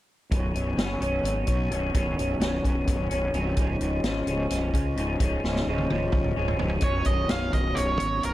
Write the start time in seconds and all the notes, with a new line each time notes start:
0.31 B0 B1 F#2 B2 F#3 C#4, kick, closed hi-hat
0.53 B0 B2 F#3 C#4, closed hi-hat
0.77 F#1 F#2 B2 F#3 C#4, snare, closed hi-hat
1.00 B0 B2 F#3 C#4, closed hi-hat
1.23 G#1, closed hi-hat
1.47 B1 B2 F#3 C#4, kick, closed hi-hat
1.71 B0 B1 F#2 B2 F#3 C#4, closed hi-hat
1.94 B0 B1 F#2 B2 F#3 C#4, kick, closed hi-hat
2.17 B0 B2 F#3 C#4, closed hi-hat
2.40 B0 F#2 B2 F#3 C#4, snare, closed hi-hat
2.64 B0 B2 F#3 C#4, kick, closed hi-hat
2.88 B0, kick, closed hi-hat
3.10 B0 B2 F#3 C#4, closed hi-hat
3.33 C1 B1 F#2 B2 F#3 C#4, closed hi-hat
3.57 C#1 C#2 G#2 C#3 F3 G#3 C#4, kick, closed hi-hat
3.80 C#1 C#3 F3 G#3 C#4, closed hi-hat
4.03 G#1 C#3 F3 G#3 C#4, snare, closed hi-hat
4.26 C#1 C#3 F3 G#3 C#4, closed hi-hat
4.50 B0, snare, closed hi-hat
4.73 C#2 C#3 F3 G#3 C#4, kick, closed hi-hat
4.96 C#1 C#2 G#2 C#3 F3 G#3 C#4, closed hi-hat
5.20 C#1 C#2 G#2 C#3 F3 G#3 C#4, kick, closed hi-hat
5.44 C#1 C#3 F3 G#3 C#4, snare
5.56 snare
5.67 C#1 C#3 F3 G#3 C#4
5.78 high tom
5.90 C#1 C#3 F3 G#3 C#4, high tom
6.12 C#1, kick, mid tom
6.24 mid tom
6.36 C#1 C#3 F3 G#3 C#4
6.48 floor tom
6.58 C#1 C#2 G#2 C#3 F3 G#3 C#4, floor tom
6.69 floor tom
6.81 B0 B1 F#2 B2 F#3 C#5, kick, closed hi-hat
6.85 C#4
7.05 B0 D#5, kick, closed hi-hat
7.29 B0 F5, snare, closed hi-hat
7.53 B0 D#5, kick, closed hi-hat
7.75 B0 C#5, closed hi-hat
8.00 G#1, closed hi-hat
8.23 B0 A#4, closed hi-hat